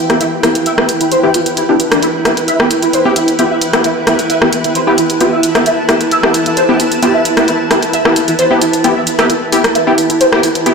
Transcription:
Already playing: E4 B4 G5
0.10 B3 E4 G4 E5, cross-stick, closed hi-hat
0.21 E4, closed hi-hat
0.43 B3 E4 F4 G4, cross-stick, closed hi-hat
0.55 closed hi-hat
0.66 E5, closed hi-hat
0.78 B3 E4 G4, cross-stick
0.89 closed hi-hat
1.01 E4, closed hi-hat
1.11 C5, closed hi-hat
1.23 B3 E4 G4
1.34 F4, closed hi-hat
1.46 closed hi-hat
1.57 E4, closed hi-hat
1.69 B3 D4 E4 G4
1.80 closed hi-hat
1.92 D4, cross-stick, closed hi-hat
2.02 E4, closed hi-hat
2.25 B3 E4 G4, cross-stick, closed hi-hat
2.37 closed hi-hat
2.48 E5, closed hi-hat
2.60 B3 E4 G4, cross-stick
2.71 closed hi-hat
2.82 E4, closed hi-hat
2.93 C5, closed hi-hat
3.05 B3 E4 G4
3.16 E4, closed hi-hat
3.28 closed hi-hat
3.39 B3 E4 F4 G4, closed hi-hat
3.51 E5
3.61 closed hi-hat
3.73 B3 E4 G4 E5, cross-stick, closed hi-hat
3.84 E4, closed hi-hat
4.07 B3 E4 G4, cross-stick, closed hi-hat
4.11 A5
4.19 closed hi-hat
4.30 E5, closed hi-hat
4.42 B3 E4 G4, cross-stick
4.53 closed hi-hat
4.64 E4, closed hi-hat
4.75 C5, closed hi-hat
4.87 B3 E4 G4
4.98 E4, closed hi-hat
5.10 closed hi-hat
5.21 B3 E4 F4 G4, closed hi-hat
5.33 E5
5.43 closed hi-hat
5.55 B3 E4 G4 E5, cross-stick, closed hi-hat
5.66 E4, closed hi-hat
5.89 B3 E4 G4, cross-stick, closed hi-hat
6.01 closed hi-hat
6.11 E5, closed hi-hat
6.23 B3 E4 G4, cross-stick
6.34 closed hi-hat
6.46 E4, closed hi-hat
6.57 C5, closed hi-hat
6.69 B3 E4 G4
6.80 E4, closed hi-hat
6.92 closed hi-hat
7.02 B3 E4 F4 G4, closed hi-hat
7.14 E5
7.25 closed hi-hat
7.37 B3 E4 G4 E5, cross-stick, closed hi-hat
7.48 E4, closed hi-hat
7.71 B3 E4 G4, cross-stick, closed hi-hat
7.83 closed hi-hat
7.93 E5, closed hi-hat
8.05 B3 E4 G4, cross-stick
8.16 closed hi-hat
8.28 E4, closed hi-hat
8.39 C5, closed hi-hat
8.51 B3 E4 G4
8.61 E4, closed hi-hat
8.73 closed hi-hat
8.84 B3 E4 F4 G4, closed hi-hat
8.96 E5
9.07 closed hi-hat
9.19 B3 E4 G4 E5, cross-stick, closed hi-hat
9.30 E4, closed hi-hat
9.52 B3 E4 G4, open hi-hat
9.64 cross-stick, closed hi-hat
9.75 E5, closed hi-hat
9.87 B3 E4 G4
9.98 open hi-hat
10.10 E4, closed hi-hat
10.15 G5
10.21 C5, closed hi-hat
10.33 B3 E4 G4, cross-stick
10.43 E4, open hi-hat
10.55 closed hi-hat
10.66 B3 E4 F4 G4, closed hi-hat

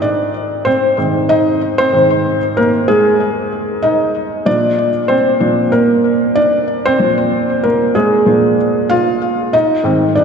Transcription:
Already playing: G#2 D#3 C4 D#4 D#5
0.02 D4 D5
0.65 C4 C5
0.98 G#2 D#3 C4
1.29 D#4 D#5
1.78 C4 C5
1.93 G#2 D#3 C4
2.57 A#3 A#4
2.88 G#3 G#4
3.83 D#4 D#5
4.46 A#2 F3 D4 D5
5.08 C4 C5
5.40 A#2 F3 D4
5.72 A#3 A#4
6.35 D4 D5
6.86 C4 C5
6.99 A#2 F3 D4
7.63 A#3 A#4
7.95 G#3 G#4
8.26 A#2 F3 D4
8.90 F4 F5
9.53 D#4 D#5
9.84 G#2 D#3 C4
10.15 D4 D5

